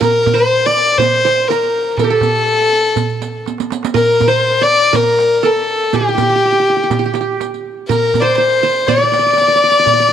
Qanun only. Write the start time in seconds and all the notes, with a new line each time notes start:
Already playing: G4
0.01 A#4
0.34 C5
0.66 D5
1.00 C5
1.25 C5
1.50 A#4
1.99 A4
2.04 G4
2.10 A4
3.94 A#4
4.28 C5
4.61 D5
4.93 A#4
5.43 A4
5.94 G4
6.01 G4
6.09 G4
6.15 G4
6.22 G4
6.30 G4
6.36 G4
6.45 G4
6.52 G4
6.60 G4
6.70 G4
6.76 G4
6.83 G4
6.91 G4
6.99 G4
7.06 G4
7.14 G4
7.21 G4
7.89 A#4
8.22 C5
8.38 C5
8.63 C5
8.88 D5
8.98 D5
9.03 D5
9.12 D5
9.19 D5
9.26 D5
9.33 D5
9.41 D5
9.48 D5
9.56 D5
9.64 D5
9.71 D5
9.79 D5
9.86 D5
9.93 D5
10.00 D5
10.08 D5